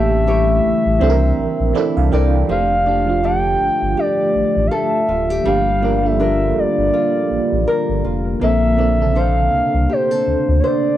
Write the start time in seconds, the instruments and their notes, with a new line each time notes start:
Already playing: sub bass A1, ambient pad C#3 G3 A3 E4, fm electric piano E3 A3 C#4 G4, nylon-string guitar A3 G4, soft synth lead E5
0.27 nylon-string guitar E4 G4 C#5
0.65 sub bass A1
0.86 sub bass A1
0.99 sub bass C2, ambient pad D3 A#3 C4 E4, fm electric piano E3 C4 D4, nylon-string guitar C4
1.03 fm electric piano A4
1.10 fm electric piano A#4
1.38 sub bass A#1
1.60 sub bass A#1
1.73 fm electric piano E3 C4 D4 A4 D5, nylon-string guitar E4
1.97 sub bass C2, fm electric piano F5
2.10 sub bass C2, fm electric piano E3 C4 D4 G5, nylon-string guitar E4 A#4 D5
2.14 fm electric piano A4
2.47 sub bass F1, ambient pad D3 G3 A3 F4, fm electric piano F3 A3 D4, nylon-string guitar F3, soft synth lead F5
2.51 fm electric piano G4
2.84 fm electric piano F3 A3 D4 G4, nylon-string guitar D4
3.06 fm electric piano F3 A3 D4 F4
3.23 nylon-string guitar D4 G4 A4, soft synth lead G5
3.61 sub bass G1
3.82 sub bass G1
3.97 nylon-string guitar G4, soft synth lead D5
4.35 sub bass A1
4.57 sub bass A1
4.67 soft synth lead F5
4.71 nylon-string guitar A4, soft synth lead E5
5.09 sub bass D1, nylon-string guitar F4
5.30 nylon-string guitar G4
5.44 sub bass G1, fm electric piano F3 A#3 D4, nylon-string guitar G3, ambient pad A#3, soft synth lead F5
5.48 fm electric piano G4
5.81 fm electric piano F3 A#3 D4, nylon-string guitar D4
5.85 fm electric piano A#4
5.98 soft synth lead F5
6.02 fm electric piano F3 A#3 D4 A4
6.06 soft synth lead E5
6.20 nylon-string guitar D4 F4 A#4
6.57 sub bass G1, soft synth lead D5
6.78 sub bass G1
6.94 nylon-string guitar F4
7.31 sub bass A1
7.53 sub bass A1
7.68 nylon-string guitar A#4
7.89 sub bass G1
8.05 sub bass F1, nylon-string guitar F4
8.40 sub bass A#1, ambient pad C3 D4 A4, fm electric piano D3 A#3 C4, nylon-string guitar A#3, soft synth lead E5
8.44 fm electric piano A4
8.77 fm electric piano D3 A#3 C4, nylon-string guitar D4
8.81 fm electric piano A4
8.98 fm electric piano C#3 A#3 C4 A4
9.05 fm electric piano D3
9.15 nylon-string guitar D4 A4 C5, soft synth lead F5
9.53 sub bass C2
9.74 sub bass C2
9.89 nylon-string guitar G4, soft synth lead C5
10.11 nylon-string guitar A4
10.27 sub bass D2
10.48 sub bass D2
10.60 nylon-string guitar C5, soft synth lead C#5
10.66 soft synth lead D5